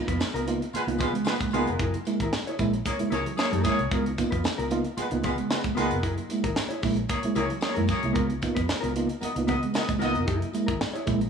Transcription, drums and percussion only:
0.08 kick medium
0.08 closed hi-hat medium
0.20 snare loud
0.20 tambourine medium
0.20 high conga medium
0.36 closed hi-hat medium
0.48 closed hi-hat medium
0.62 closed hi-hat soft
0.73 closed hi-hat medium
0.73 tambourine soft
0.73 muted conga medium
0.88 closed hi-hat medium
0.98 kick loud
0.98 closed hi-hat medium
0.98 tambourine medium
0.98 muted conga medium
0.98 low conga medium
1.15 closed hi-hat medium
1.25 snare loud
1.25 tambourine loud
1.25 high conga medium
1.40 kick loud
1.40 closed hi-hat medium
1.40 high conga medium
1.51 closed hi-hat medium
1.51 tambourine medium
1.67 closed hi-hat soft
1.79 kick loud
1.79 closed hi-hat medium
1.94 closed hi-hat soft
2.05 closed hi-hat medium
2.05 tambourine medium
2.05 muted conga medium
2.20 kick medium
2.20 closed hi-hat medium
2.32 snare loud
2.32 tambourine medium
2.32 high conga medium
2.47 closed hi-hat medium
2.59 kick medium
2.59 closed hi-hat medium
2.59 tambourine soft
2.73 closed hi-hat soft
2.85 kick loud
2.85 closed hi-hat loud
2.85 tambourine soft
2.85 muted conga medium
2.99 closed hi-hat medium
3.11 closed hi-hat medium
3.11 tambourine medium
3.11 muted conga medium
3.11 low conga medium
3.26 closed hi-hat medium
3.38 snare loud
3.38 tambourine medium
3.38 high conga medium
3.53 closed hi-hat soft
3.53 high conga medium
3.64 kick loud
3.64 snare soft
3.64 closed hi-hat medium
3.64 tambourine medium
3.79 closed hi-hat soft
3.91 kick loud
3.91 closed hi-hat medium
3.91 tambourine soft
3.91 muted conga soft
4.06 closed hi-hat soft
4.18 kick medium
4.18 closed hi-hat medium
4.18 tambourine medium
4.18 muted conga medium
4.32 kick medium
4.32 closed hi-hat medium
4.44 snare loud
4.44 tambourine medium
4.44 high conga medium
4.59 closed hi-hat medium
4.70 closed hi-hat medium
4.70 tambourine soft
4.84 closed hi-hat soft
4.97 closed hi-hat loud
4.97 tambourine medium
4.97 muted conga medium
5.11 closed hi-hat medium
5.24 kick medium
5.24 closed hi-hat medium
5.24 tambourine medium
5.24 muted conga medium
5.24 low conga medium
5.38 closed hi-hat medium
5.50 snare loud
5.50 tambourine loud
5.50 high conga medium
5.64 kick loud
5.64 closed hi-hat soft
5.64 high conga medium
5.77 snare soft
5.77 closed hi-hat medium
5.77 tambourine medium
5.91 closed hi-hat soft
6.03 kick medium
6.03 closed hi-hat medium
6.03 muted conga soft
6.18 closed hi-hat soft
6.30 closed hi-hat medium
6.30 tambourine soft
6.30 muted conga medium
6.44 kick medium
6.44 closed hi-hat medium
6.56 snare loud
6.56 tambourine medium
6.56 high conga medium
6.71 closed hi-hat medium
6.83 kick loud
6.83 open hi-hat medium
6.83 tambourine soft
6.97 closed hi-hat soft
7.09 kick loud
7.09 closed hi-hat medium
7.09 tambourine soft
7.09 muted conga medium
7.23 closed hi-hat medium
7.35 closed hi-hat medium
7.35 tambourine medium
7.35 muted conga medium
7.35 low conga medium
7.50 closed hi-hat medium
7.61 snare loud
7.61 tambourine loud
7.61 high conga medium
7.76 closed hi-hat medium
7.76 high conga medium
7.88 kick medium
7.88 snare soft
7.88 closed hi-hat medium
7.88 tambourine medium
8.03 closed hi-hat soft
8.15 kick loud
8.15 closed hi-hat medium
8.30 closed hi-hat soft
8.42 kick medium
8.42 closed hi-hat medium
8.42 tambourine medium
8.42 muted conga medium
8.56 kick medium
8.56 closed hi-hat medium
8.68 snare loud
8.68 tambourine medium
8.68 high conga medium
8.84 closed hi-hat medium
8.96 closed hi-hat medium
9.09 closed hi-hat soft
9.21 closed hi-hat loud
9.21 tambourine soft
9.21 muted conga medium
9.36 closed hi-hat medium
9.48 kick medium
9.48 closed hi-hat medium
9.48 tambourine medium
9.48 muted conga medium
9.48 low conga medium
9.63 closed hi-hat soft
9.74 snare loud
9.74 tambourine loud
9.74 high conga medium
9.89 kick loud
9.89 closed hi-hat medium
9.89 high conga medium
10.00 snare soft
10.00 closed hi-hat medium
10.00 tambourine medium
10.15 closed hi-hat soft
10.28 kick loud
10.28 closed hi-hat medium
10.42 closed hi-hat medium
10.53 closed hi-hat medium
10.53 tambourine soft
10.53 muted conga medium
10.68 kick loud
10.68 closed hi-hat medium
10.81 snare loud
10.81 tambourine medium
10.81 high conga medium
10.95 closed hi-hat medium
11.07 kick loud
11.07 closed hi-hat medium
11.07 tambourine soft
11.21 closed hi-hat soft

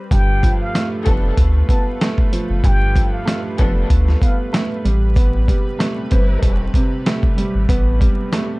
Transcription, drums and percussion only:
0.11 kick loud
0.11 closed hi-hat loud
0.43 kick loud
0.43 closed hi-hat medium
0.75 snare loud
0.75 closed hi-hat loud
1.06 kick loud
1.06 closed hi-hat medium
1.37 kick loud
1.37 closed hi-hat medium
1.69 kick loud
1.69 closed hi-hat medium
2.01 snare loud
2.01 closed hi-hat loud
2.18 kick loud
2.33 closed hi-hat medium
2.64 kick loud
2.64 closed hi-hat loud
2.96 kick medium
2.96 closed hi-hat medium
3.28 snare loud
3.28 closed hi-hat loud
3.58 kick loud
3.58 closed hi-hat medium
3.90 kick loud
3.90 closed hi-hat medium
4.08 snare soft
4.22 kick loud
4.22 closed hi-hat medium
4.54 snare loud
4.54 closed hi-hat loud
4.86 closed hi-hat medium
5.16 kick loud
5.16 closed hi-hat loud
5.48 kick medium
5.48 closed hi-hat medium
5.80 snare loud
5.80 closed hi-hat loud
6.11 kick loud
6.11 closed hi-hat medium
6.43 kick loud
6.43 closed hi-hat medium
6.74 kick medium
6.74 closed hi-hat medium
7.06 snare loud
7.06 closed hi-hat loud
7.23 kick loud
7.38 closed hi-hat medium
7.69 kick loud
7.69 closed hi-hat loud
8.01 kick medium
8.01 closed hi-hat medium
8.33 snare loud
8.33 closed hi-hat loud

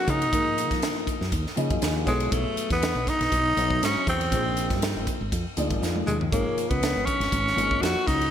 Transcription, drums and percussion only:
0.08 kick medium
0.08 hi-hat pedal medium
0.08 ride soft
0.22 ride medium
0.33 kick medium
0.33 hi-hat pedal medium
0.33 ride medium
0.58 hi-hat pedal medium
0.58 ride soft
0.71 kick medium
0.71 snare soft
0.71 ride medium
0.82 snare loud
0.82 hi-hat pedal medium
0.82 ride medium
1.07 kick medium
1.07 hi-hat pedal medium
1.07 ride medium
1.22 snare soft
1.32 kick medium
1.32 hi-hat pedal medium
1.32 ride medium
1.47 snare soft
1.57 hi-hat pedal medium
1.57 ride soft
1.70 kick medium
1.70 ride soft
1.82 snare medium
1.82 hi-hat pedal medium
1.82 ride medium
2.07 kick medium
2.07 snare soft
2.07 hi-hat pedal medium
2.07 ride soft
2.20 ride medium
2.32 kick medium
2.32 hi-hat pedal medium
2.32 ride medium
2.57 hi-hat pedal medium
2.57 ride soft
2.70 kick medium
2.70 snare soft
2.70 ride soft
2.82 snare loud
2.82 hi-hat pedal medium
2.82 ride medium
3.07 kick medium
3.07 snare soft
3.07 hi-hat pedal medium
3.07 ride soft
3.21 snare soft
3.21 ride medium
3.32 kick medium
3.32 hi-hat pedal medium
3.32 ride medium
3.57 hi-hat pedal medium
3.57 ride medium
3.71 kick medium
3.83 snare medium
3.83 hi-hat pedal medium
3.83 ride medium
4.07 kick medium
4.07 hi-hat pedal medium
4.07 ride soft
4.21 ride medium
4.32 kick medium
4.32 hi-hat pedal medium
4.32 ride medium
4.57 hi-hat pedal medium
4.57 ride medium
4.70 kick medium
4.70 snare soft
4.70 ride medium
4.82 snare loud
4.82 hi-hat pedal medium
4.82 ride medium
5.07 kick medium
5.07 hi-hat pedal medium
5.07 ride medium
5.32 kick medium
5.32 hi-hat pedal medium
5.32 ride medium
5.57 hi-hat pedal medium
5.57 ride soft
5.70 kick medium
5.70 ride medium
5.83 snare medium
5.83 hi-hat pedal medium
5.96 high tom medium
6.07 hi-hat pedal medium
6.07 mid tom medium
6.21 floor tom medium
6.32 kick medium
6.32 hi-hat pedal medium
6.32 ride medium
6.58 hi-hat pedal medium
6.58 ride medium
6.71 kick medium
6.71 ride medium
6.83 snare loud
6.83 hi-hat pedal medium
6.83 ride medium
7.07 kick medium
7.07 hi-hat pedal medium
7.07 ride soft
7.21 snare soft
7.21 ride medium
7.32 kick medium
7.32 hi-hat pedal medium
7.32 ride medium
7.47 snare soft
7.58 hi-hat pedal medium
7.58 ride soft
7.71 kick medium
7.83 snare medium
7.83 hi-hat pedal medium
7.83 ride medium
8.08 kick medium
8.08 snare soft
8.08 hi-hat pedal medium
8.08 ride soft
8.21 ride medium

